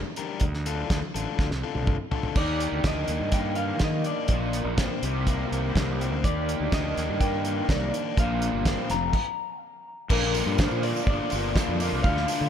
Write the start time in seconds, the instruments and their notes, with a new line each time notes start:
0.16 overdriven electric guitar G3 D4 G4 A#4, closed hi-hat
0.40 fingered electric bass D2, kick, closed hi-hat
0.54 snare
0.66 overdriven electric guitar D3 D4 F4 A4, closed hi-hat
0.90 fingered electric bass D2, kick, snare, closed hi-hat
1.15 fingered electric bass A1, overdriven electric guitar D3 D4 F4 A4, closed hi-hat
1.39 fingered electric bass D2, kick, snare
1.51 fingered electric bass C2, snare
1.64 overdriven electric guitar D3 D4 F4 A4
1.75 fingered electric bass C2, high tom
1.87 kick, mid tom
2.12 overdriven electric guitar D3 D4 F4 A4, floor tom
2.23 floor tom
2.36 fingered electric bass D#2, overdriven electric guitar D#3 A#3 G4, clean electric guitar D5, kick, crash
2.60 closed hi-hat
2.72 fingered electric bass D2
2.84 fingered electric bass D2, overdriven electric guitar D4, clean electric guitar D#5, kick, snare, closed hi-hat
3.08 fingered electric bass D#2, overdriven electric guitar D#3, closed hi-hat
3.20 fingered electric bass G2
3.32 overdriven electric guitar A#3, clean electric guitar G5, kick, closed hi-hat
3.55 overdriven electric guitar D#3, clean electric guitar F5, closed hi-hat
3.79 fingered electric bass D#3, overdriven electric guitar A#3, kick, snare, closed hi-hat
3.84 clean electric guitar D#5
4.04 overdriven electric guitar D4, clean electric guitar D5, closed hi-hat
4.28 fingered electric bass A#1, overdriven electric guitar A#2 D3, kick, closed hi-hat
4.32 overdriven electric guitar A#3 D4 F4
4.53 closed hi-hat
4.65 fingered electric bass A#1
4.78 overdriven electric guitar C4, kick, snare, closed hi-hat
5.03 fingered electric bass C2, overdriven electric guitar C3 D#3 G3 C4 G4, closed hi-hat
5.27 overdriven electric guitar A#3, kick, closed hi-hat
5.52 fingered electric bass C2, overdriven electric guitar D#3, closed hi-hat
5.75 fingered electric bass C2, overdriven electric guitar A#3, kick, snare, closed hi-hat
6.00 overdriven electric guitar C4, closed hi-hat
6.12 fingered electric bass D2
6.24 fingered electric bass D#2, overdriven electric guitar D#3 A#3 G4, clean electric guitar D5, kick, closed hi-hat
6.49 closed hi-hat
6.60 fingered electric bass D2
6.72 fingered electric bass D2, overdriven electric guitar D4, clean electric guitar D#5, kick, snare, closed hi-hat
6.97 fingered electric bass D#2, overdriven electric guitar D#3, snare, closed hi-hat
7.09 fingered electric bass G2
7.21 overdriven electric guitar A#3, clean electric guitar G5, kick, closed hi-hat
7.45 overdriven electric guitar D#3, closed hi-hat
7.69 fingered electric bass C2, overdriven electric guitar A#3, clean electric guitar D5, kick, snare, closed hi-hat
7.94 overdriven electric guitar D4, closed hi-hat
8.16 fingered electric bass A#1, overdriven electric guitar A#2 D3 A#3 D4 F4, clean electric guitar F5, kick, closed hi-hat
8.42 closed hi-hat
8.53 fingered electric bass G1
8.65 overdriven electric guitar C4, kick, snare, closed hi-hat
8.90 fingered electric bass F1, overdriven electric guitar F2, clean electric guitar A#5, snare, closed hi-hat
9.13 kick, crash
10.10 fingered electric bass A#1, overdriven electric guitar A#2 D3 A#3 D4 F4, clean electric guitar A#4, kick, crash, tambourine
10.23 snare
10.34 overdriven electric guitar D3 A#3 D4 F4, open hi-hat, tambourine
10.46 fingered electric bass G2
10.58 overdriven electric guitar A#2 D3 A#3 D4 F4, clean electric guitar C5, kick, snare, tambourine
10.71 fingered electric bass A#2, tambourine
10.83 overdriven electric guitar A#3 D4 F4, clean electric guitar D5, open hi-hat, tambourine
10.96 tambourine
11.07 fingered electric bass G1, overdriven electric guitar D3 A#3 D4 F4, clean electric guitar D5, kick
11.30 fingered electric bass G1, overdriven electric guitar A#2 D3 A#3 D4 F4, open hi-hat, tambourine
11.55 overdriven electric guitar D3 A#3 D4 F4, kick, snare, tambourine
11.68 fingered electric bass F2
11.80 overdriven electric guitar A#3 D4 F4, open hi-hat, tambourine
11.92 fingered electric bass C2
12.03 fingered electric bass D2, overdriven electric guitar D3 A3 D4, clean electric guitar F5, kick, tambourine
12.07 overdriven electric guitar F4
12.17 snare
12.28 overdriven electric guitar D3 A3 D4 F4, open hi-hat, tambourine
12.41 fingered electric bass D3